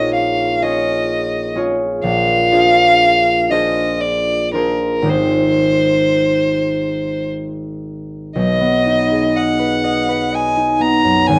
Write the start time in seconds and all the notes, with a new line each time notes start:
Already playing: A#1 C#4 D#4 F4 G#4 C#5 D#5
0.14 F5
0.62 C#4 F4 G#4 C#5 D#5
1.55 C#4 F4 G#4 C#5
2.04 A#1 F5
2.51 D4 F4 G#4 C5
3.49 D4 F4 G#4 C5 D#5
4.00 D5
4.53 D4 F4 G#4 A#4 C5
5.02 G#1 D#4 G4 G#4 C5
5.10 C5
8.35 B1 D#5
8.61 B3
8.86 D#4
9.11 G#4
9.35 D#5 F#5
9.59 B4
9.84 D#5
10.09 B4
10.32 D#5 G#5
10.56 D#4
10.80 B3 A#5
11.04 F#2
11.27 G#1 G#5